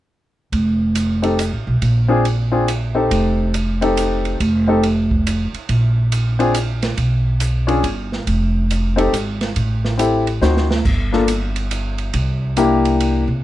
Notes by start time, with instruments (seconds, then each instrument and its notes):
0.52 upright bass F1, kick, ride
0.95 hi-hat pedal, ride
1.22 grand piano C4 D#4 G4 A4, ride
1.39 hi-hat pedal, ride
1.53 upright bass A1
1.67 upright bass B1
1.82 upright bass A#1, kick, ride
2.08 grand piano C4 D4 F4 G#4
2.25 ride
2.52 grand piano C4 D4 F4 G#4
2.68 hi-hat pedal, ride
2.95 grand piano C4 D#4 G4 A4
3.11 upright bass F1, kick, ride
3.54 hi-hat pedal, ride
3.81 grand piano C4 D#4 G4 A4, ride
3.97 hi-hat pedal, ride
4.25 ride
4.40 upright bass F1, kick, ride
4.67 grand piano C4 D#4 G4 A4
4.83 ride
5.11 kick
5.27 hi-hat pedal, ride
5.53 muted upright bass stroke, ride
5.69 upright bass A#1, kick, ride
6.12 hi-hat pedal, ride
6.39 grand piano C4 D4 F4 G#4, ride
6.54 hi-hat pedal, ride
6.82 snare, ride
6.97 upright bass B1, kick, ride
7.40 hi-hat pedal, ride
7.67 grand piano C#4 D4 F4 G#4, ride
7.83 upright bass G1, ride
8.12 snare
8.27 upright bass F1, kick, ride
8.71 hi-hat pedal, ride
8.96 grand piano C4 D#4 G4 A4, ride
9.13 upright bass G#1, hi-hat pedal, ride
9.41 snare, ride
9.56 upright bass A1, kick, ride
9.85 snare
9.98 grand piano C4 E4 G4 A4, hi-hat pedal, ride
10.27 ride
10.41 upright bass D2, grand piano C4 D#4 F#4 C5, snare, hi-hat pedal
10.57 snare
10.71 snare
10.85 upright bass G1, kick, crash
11.12 grand piano A#3 D4 F4 A4, snare
11.28 hi-hat pedal, ride
11.56 ride
11.71 hi-hat pedal, ride
11.98 ride
12.13 upright bass C2, kick, ride
12.57 grand piano A#3 D4 E4 G4, hi-hat pedal, ride
12.85 ride
13.00 ride
13.28 upright bass C3